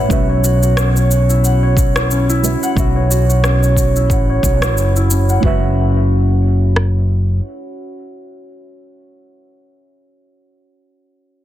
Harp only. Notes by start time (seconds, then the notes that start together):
Already playing: C#4 E4 C#5 F#5
0.10 F#4
0.29 C#5
0.44 F#4
0.63 F#4
0.77 C#4
0.96 C#5
1.10 F#4
1.29 E4
1.44 F#5
1.63 C#5
1.77 F#4
1.97 E4
2.11 C#4
2.29 E4
2.44 C#4
2.63 F#5
2.77 F#4
2.96 C#5
3.10 F#4
3.29 F#4
3.44 C#4
3.62 C#5
3.77 F#4
3.96 E4
4.11 F#5
4.30 C#5
4.45 F#4
4.63 E4
4.78 C#4
4.96 E4
5.11 C#4
5.29 F#5
5.44 F#4